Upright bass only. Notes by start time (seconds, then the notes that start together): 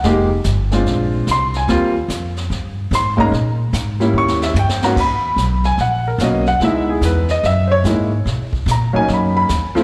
0.04 F1
0.45 G1
0.86 A#1
1.27 C2
1.68 D#2
2.08 F2
2.50 G2
2.91 G#2
3.32 A#2
3.73 G#2
4.13 D#2
4.54 G2
4.96 D#2
5.36 B1
5.78 A#1
6.18 B1
6.60 C#2
7.01 E2
7.43 F#2
7.84 G#2
8.25 B2
8.66 A#2
8.94 muted upright bass stroke
9.08 F#2
9.49 D#2
9.76 muted upright bass stroke